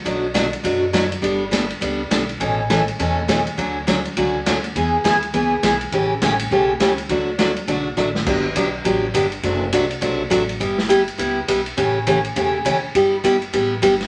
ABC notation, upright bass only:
X:1
M:4/4
L:1/8
Q:"Swing" 1/4=205
K:D
V:1 name="Upright bass" clef=bass
B,,,4 F,,4 | G,,,4 C,,2 B,,,2 | A,,,4 E,,4 | D,,4 C,,2 D,,2 |
E,,2 D,,2 C,,2 B,,,2 | A,,,2 A,,,2 B,,,2 C,,2 | D,,4 B,,,2 A,,,2 | G,,,2 B,,,2 A,,,2 G,,,2 |
F,,,2 =C,,2 B,,,2 A,,,2 | G,,,4 C,,2 B,,,2 | A,,,4 E,,,4 | G,,,4 A,,,2 G,,,2 |]